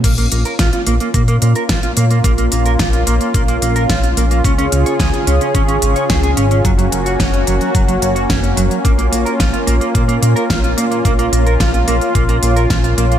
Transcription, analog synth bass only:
X:1
M:4/4
L:1/8
Q:1/4=109
K:Bbm
V:1 name="Analog synth bass" clef=bass
B,,, B,,, B,,, B,,, B,, B,, B,,, B,, | B,,, B,,, B,,, B,,, B,,, B,,, B,,, B,,, | D,, D,, D,, D,, A,,, A,,, D,, A,,, | G,,, G,,, G,,, G,,, G,,, G,,, G,,, G,,, |
B,,, B,,, B,,, B,,, B,, B,, B,,, B,, | B,,, B,,, B,,, B,,, B,,, B,,, B,,, B,,, |]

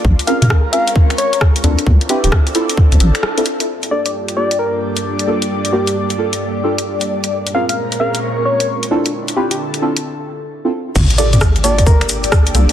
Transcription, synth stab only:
X:1
M:4/4
L:1/16
Q:"Swing 16ths" 1/4=132
K:Gm
V:1 name="Synth stab"
z2 [C_DF_AB] z3 [CDFAB] z6 z [C=D=EF=A] z | z2 [CD=EF=B] z3 [CDEFA] z6 [CDEFA] z2 | z2 [B,DFGA] z3 [B,DFGA] z6 z [B,DFGA] z | z2 [B,DFGB] z3 [B,DFGA] z3 [B,DFGA] z4 z |
z2 [C_DF_AB] z3 [CDFAB] z6 z [C=D=EF=A] z | z2 [CD=EF=B] z3 [CDEFA] z6 [CDEFA] z2 | z2 [B,DFGA] z3 [B,DFGA] z6 z [B,DFGA] z |]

